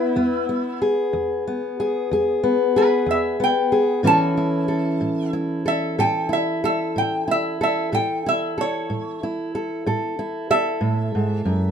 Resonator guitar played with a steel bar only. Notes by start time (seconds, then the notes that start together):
Already playing: E4
2.78 B4
3.11 E5
3.44 G5
4.07 A5
5.68 E5
6.00 G5
6.33 E5
6.65 E5
6.98 G5
7.31 E5
7.63 E5
7.95 G5
8.28 E5
8.61 C#5
10.51 E5